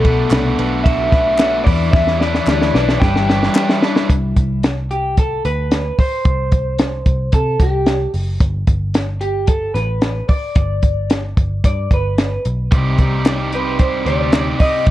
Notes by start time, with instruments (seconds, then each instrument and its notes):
Already playing: picked electric bass B1, clean electric guitar B2 A4
0.04 overdriven electric guitar A3 D4 F#4 B4, kick, ride
0.30 picked electric bass C2, overdriven electric guitar A3 D4 F#4 B4, snare, clap, ride
0.58 picked electric bass B1, overdriven electric guitar A3 D4 F#4 B4, ride
0.84 overdriven electric guitar B2 F#3 A3 D4 F#4 B4, clean electric guitar E5, kick, ride
1.12 overdriven electric guitar A3 D4 F#4 B4, kick, snare, ride
1.38 overdriven electric guitar A3 D4 F#4, snare, clap, ride
1.43 overdriven electric guitar B4
1.64 picked electric bass E2, clean electric guitar E3 D5, overdriven electric guitar B4, kick, open hi-hat, ride
1.69 overdriven electric guitar D4 E4
1.92 picked electric bass E2, overdriven electric guitar E3 G3 D4, clean electric guitar E5, kick, snare
1.97 overdriven electric guitar E4 B4
2.07 snare
2.20 overdriven electric guitar E4 B4, clean electric guitar D5, snare
2.25 overdriven electric guitar D4
2.35 snare
2.47 picked electric bass D2, overdriven electric guitar G3 D4 E4, snare, clap
2.52 overdriven electric guitar B4
2.62 snare
2.74 picked electric bass B1, overdriven electric guitar E4 B4, clean electric guitar D5, snare
2.78 overdriven electric guitar D4
2.89 snare
3.00 picked electric bass G1, overdriven electric guitar G3 D4 E4 B4, clean electric guitar G5, kick, snare
3.16 snare
3.29 overdriven electric guitar D4 E4 B4, snare
3.43 snare
3.55 overdriven electric guitar G3 D4 E4 B4, snare, clap
3.69 snare
3.83 overdriven electric guitar D4 E4 B4, snare
3.96 snare
4.10 picked electric bass C2, kick, closed hi-hat
4.36 picked electric bass C2, kick, closed hi-hat
4.63 snare, closed hi-hat
4.91 clean electric guitar G4, closed hi-hat
5.17 clean electric guitar A4, kick, closed hi-hat
5.45 picked electric bass D2, clean electric guitar B4, closed hi-hat
5.71 snare, closed hi-hat
5.99 clean electric guitar C5, kick, open hi-hat
6.25 picked electric bass C2, kick, closed hi-hat
6.52 kick, closed hi-hat
6.79 snare, closed hi-hat
7.06 picked electric bass C2, kick, closed hi-hat
7.32 picked electric bass C3, clean electric guitar A4, kick, closed hi-hat
7.60 picked electric bass C2, clean electric guitar G4, kick, snare, closed hi-hat
7.86 snare, closed hi-hat
8.14 picked electric bass F#1, open hi-hat
8.40 picked electric bass G1, kick, closed hi-hat
8.67 picked electric bass G1, kick, closed hi-hat
8.94 snare, closed hi-hat
9.21 clean electric guitar G4, closed hi-hat
9.47 clean electric guitar A4, kick, closed hi-hat
9.74 picked electric bass A1, clean electric guitar B4, snare, closed hi-hat
10.02 snare, closed hi-hat
10.28 clean electric guitar D5, kick, open hi-hat
10.55 picked electric bass G1, kick, closed hi-hat
10.82 kick, closed hi-hat
11.10 snare, closed hi-hat
11.37 picked electric bass G1, kick, closed hi-hat
11.64 picked electric bass G2, clean electric guitar D5, kick, closed hi-hat
11.91 picked electric bass G1, clean electric guitar B4, kick, closed hi-hat
12.18 snare, closed hi-hat
12.45 picked electric bass B1, closed hi-hat
12.71 picked electric bass C2, overdriven electric guitar C3 G3 C4 D#4 G4 D5, kick, closed hi-hat
12.98 picked electric bass C2, overdriven electric guitar C4 D#4 G4 D5, kick, closed hi-hat
13.25 overdriven electric guitar C4 D#4 G4 D5, snare, clap, closed hi-hat
13.52 overdriven electric guitar C4 D#4 G4 D5, clean electric guitar B4, closed hi-hat
13.79 overdriven electric guitar C3 G3 C4 D#4 G4 D5, clean electric guitar C5, kick, closed hi-hat
14.06 picked electric bass D2, overdriven electric guitar C4 D#4 G4 D5, clean electric guitar D5, snare, closed hi-hat
14.32 overdriven electric guitar C4 D#4 G4 D5, snare, clap, closed hi-hat
14.58 overdriven electric guitar C4 D#4 G4 D5, clean electric guitar D#5, kick, open hi-hat
14.86 picked electric bass C2, overdriven electric guitar C3 G3 C4 D#4 G4, kick, closed hi-hat